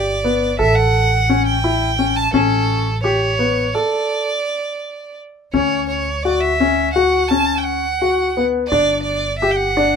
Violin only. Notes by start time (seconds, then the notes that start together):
Already playing: D5
0.59 E5
0.76 F#5
1.46 G5
2.16 A5
2.33 A4
3.03 C#5
3.74 D5
5.53 C#5
5.88 C#5
6.23 D5
6.40 E5
6.93 F#5
7.28 A5
7.58 G5
7.64 F#5
8.68 D5
9.03 D5
9.38 E5
9.51 G5
9.56 F#5